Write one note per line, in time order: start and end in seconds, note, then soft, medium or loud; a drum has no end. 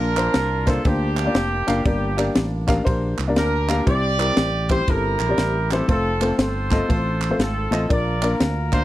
0.00 0.27 A#1 loud
0.00 0.63 A#2 medium
0.00 0.82 D4 medium
0.00 0.82 F4 medium
0.00 0.64 A#4 loud
0.17 0.45 A#3 medium
0.17 0.45 D4 medium
0.17 0.45 F4 medium
0.17 0.45 A#4 medium
0.17 0.46 C5 medium
0.17 clap loud
0.17 ride medium
0.34 0.78 C2 loud
0.34 snare loud
0.34 ride medium
0.66 0.78 A#3 medium
0.66 0.79 D4 medium
0.66 0.79 F4 medium
0.66 0.86 A4 medium
0.66 0.79 A#4 medium
0.66 0.79 C5 medium
0.66 kick loud
0.66 snare soft
0.66 clap medium
0.66 ride medium
0.85 1.28 D2 medium
0.85 1.17 A#3 medium
0.85 1.82 A#3 medium
0.85 1.17 D4 medium
0.85 1.82 D4 medium
0.85 1.18 F4 medium
0.85 1.85 G4 loud
0.85 1.18 A#4 medium
0.85 1.18 C5 medium
0.85 kick loud
0.85 ride medium
1.17 clap loud
1.17 ride medium
1.25 1.50 A#3 medium
1.25 1.51 D4 medium
1.25 1.51 F4 medium
1.25 1.51 A#4 medium
1.25 1.52 D5 medium
1.35 1.63 F1 medium
1.35 snare loud
1.35 ride medium
1.67 1.83 F#1 loud
1.67 1.79 A#3 medium
1.67 1.79 D4 medium
1.67 1.79 F4 medium
1.67 1.79 A#4 medium
1.67 1.80 F5 loud
1.67 snare soft
1.67 clap loud
1.67 ride medium
1.85 2.28 G1 loud
1.85 2.64 G2 medium
1.85 2.07 A#3 medium
1.85 2.82 A#3 medium
1.85 2.07 D4 medium
1.85 2.82 D4 medium
1.85 2.07 G4 medium
1.85 2.33 G4 medium
1.85 2.07 A#4 medium
1.85 2.07 D5 medium
1.85 kick loud
1.85 ride medium
2.17 2.46 A#3 medium
2.17 2.46 D4 medium
2.17 2.46 G4 medium
2.17 2.46 A#4 medium
2.17 2.46 D5 medium
2.17 clap loud
2.17 ride medium
2.35 2.79 A1 loud
2.35 snare loud
2.35 ride medium
2.67 2.80 A#3 medium
2.67 2.80 D4 medium
2.67 2.80 G4 medium
2.67 2.80 A#4 medium
2.67 2.80 F5 loud
2.67 kick loud
2.67 snare soft
2.67 clap medium
2.67 ride medium
2.84 3.14 A#1 loud
2.84 3.17 A#3 medium
2.84 3.17 D4 medium
2.84 3.18 G4 medium
2.84 3.18 A#4 medium
2.84 3.18 C5 loud
2.84 kick loud
2.84 ride medium
3.18 3.37 C2 medium
3.18 clap medium
3.18 ride medium
3.27 3.53 A#3 medium
3.27 3.53 D4 medium
3.27 3.53 G4 medium
3.27 3.53 A#4 medium
3.27 3.53 D5 medium
3.36 3.79 D2 medium
3.36 3.84 D4 medium
3.36 3.84 G4 medium
3.36 3.84 A#4 loud
3.36 snare loud
3.36 ride medium
3.68 3.80 A#3 medium
3.68 3.81 D4 medium
3.68 3.81 G4 medium
3.68 3.81 A#4 medium
3.68 3.81 F5 medium
3.68 snare soft
3.68 clap loud
3.68 ride medium
3.85 4.30 C2 medium
3.85 4.66 C3 medium
3.85 4.08 G3 medium
3.85 4.08 C4 medium
3.85 4.09 E4 medium
3.85 4.08 G4 medium
3.85 4.84 G4 medium
3.85 4.09 C5 medium
3.85 4.66 D5 loud
3.85 kick loud
3.85 ride medium
4.18 4.47 G3 medium
4.18 4.47 C4 medium
4.18 4.47 E4 medium
4.18 4.48 G4 medium
4.18 4.48 A#4 medium
4.18 clap loud
4.18 ride medium
4.37 4.80 A1 loud
4.37 snare loud
4.37 ride medium
4.69 4.81 G3 medium
4.69 4.81 C4 medium
4.69 4.82 E4 medium
4.69 4.82 G4 medium
4.69 4.82 C5 medium
4.69 4.87 C5 loud
4.69 kick medium
4.69 clap medium
4.69 ride medium
4.88 5.15 G1 loud
4.88 5.20 G3 medium
4.88 5.20 C4 medium
4.88 5.85 E4 medium
4.88 5.21 E4 medium
4.88 5.85 G4 medium
4.88 5.21 G4 medium
4.88 5.21 A4 medium
4.88 5.71 A#4 medium
4.88 kick loud
4.88 ride medium
5.19 5.35 A#1 medium
5.19 clap medium
5.19 ride medium
5.28 5.54 G3 medium
5.28 5.54 C4 medium
5.28 5.54 E4 medium
5.28 5.54 G4 medium
5.28 5.55 D5 medium
5.38 5.81 A1 medium
5.38 snare medium
5.38 ride medium
5.71 5.83 G3 medium
5.71 5.83 C4 medium
5.71 5.83 E4 medium
5.71 5.83 G4 medium
5.71 5.89 A4 medium
5.71 5.84 C5 medium
5.71 snare soft
5.71 clap loud
5.71 ride medium
5.88 6.31 F1 medium
5.88 6.10 A3 medium
5.88 6.10 C4 medium
5.88 6.86 C4 medium
5.88 6.10 F4 medium
5.88 6.39 F4 medium
5.88 6.10 A4 medium
5.88 6.36 A4 medium
5.88 6.10 C5 medium
5.88 kick loud
5.88 ride medium
6.21 6.49 A3 medium
6.21 6.50 C4 medium
6.21 6.50 F4 medium
6.21 6.50 A4 medium
6.21 6.50 C5 medium
6.21 clap loud
6.21 ride medium
6.38 6.81 G1 loud
6.38 7.36 F4 medium
6.38 7.36 A4 medium
6.38 7.41 C5 medium
6.38 snare loud
6.38 ride medium
6.71 6.83 A3 medium
6.71 6.83 C4 medium
6.71 6.83 F4 medium
6.71 6.84 A4 medium
6.71 6.84 D#5 medium
6.71 kick loud
6.71 snare soft
6.71 clap medium
6.71 ride medium
6.88 7.32 A1 loud
6.88 7.21 A3 medium
6.88 7.21 C4 medium
6.88 7.21 F4 medium
6.88 7.22 A4 medium
6.88 7.22 C5 medium
6.88 kick loud
6.88 ride medium
7.21 clap loud
7.21 ride medium
7.30 7.55 A3 medium
7.30 7.55 C4 medium
7.30 7.56 F4 medium
7.30 7.56 A4 medium
7.30 7.56 C5 medium
7.39 7.67 G#1 medium
7.39 7.87 C4 medium
7.39 7.87 F4 medium
7.39 7.91 A4 medium
7.39 snare loud
7.39 ride medium
7.71 7.87 A1 medium
7.71 7.83 A3 medium
7.71 7.84 C4 medium
7.71 7.84 F4 medium
7.71 7.84 A4 medium
7.71 7.84 D#5 loud
7.71 clap loud
7.71 ride medium
7.89 8.33 A#1 medium
7.89 8.68 A#2 medium
7.89 8.11 A#3 medium
7.89 8.11 D4 medium
7.89 8.11 F4 medium
7.89 8.84 F4 medium
7.89 8.11 A#4 medium
7.89 8.84 A#4 medium
7.89 8.11 D5 medium
7.89 8.36 D5 medium
7.89 kick loud
7.89 ride medium
8.22 8.51 A#3 medium
8.22 8.51 D4 medium
8.22 8.51 F4 medium
8.22 8.51 A#4 medium
8.22 8.51 D5 medium
8.22 clap loud
8.22 ride medium
8.40 8.84 D2 loud
8.40 snare loud
8.40 ride medium
8.72 8.84 A#3 medium
8.72 8.84 D4 medium
8.72 8.84 F4 medium
8.72 8.84 A#4 medium
8.72 8.84 C5 loud
8.72 8.84 F5 medium
8.72 kick loud
8.72 clap medium
8.72 ride medium